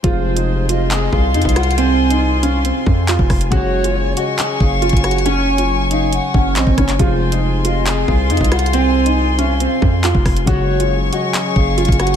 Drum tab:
HH |x--------x--------x-----x-----------x-x-x-x-x-x-|x--------x--------x-----x-----------x-----o--x--|x--------x--------x-----x-----------x-x-x-x-x-x-|x--------x--------x-----x-----------x-----x--x--|
CP |------------------------x-----------------------|------------------------------------x-----------|------------------------x-----------------------|------------------------------------x--------x--|
SD |------------------------------------------r-----|------------------------------------------r-----|------------------------------------------r-----|------------------------------------------r-----|
BD |o-----------------------------o--------o--------|------------------------------o--------o--o-----|o-----------------------------o--------o--------|------------------------------o--------o--o-----|

HH |x--------x--------x-----x-----------x-x-x-x-x-x-|x--------x--------x-----x-----------x-----o--x--|x--------x--------x-----x-----------x-x-x-x-x---|
CP |------------------------x-----------------------|------------------------------------x-----------|------------------------x-----------------------|
SD |------------------------------------------r-----|------------------------------------------r-----|------------------------------------------r-----|
BD |o-----------------------------o--------o--------|------------------------------o--------o--o-----|o-----------------------------o--------o--------|